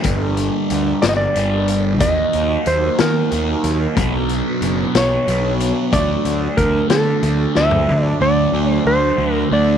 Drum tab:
HH |x-x-x-x-x-x-|x-x-x-x-x-x-|x-x-x-x-x-x-|x-x-x-x-x---|
SD |------o-----|------o-----|------o-----|------o---o-|
FT |------------|------------|------------|-----------o|
BD |o-----------|o-----------|o-----------|o---o-------|

HH |------------|
SD |------------|
FT |------------|
BD |------------|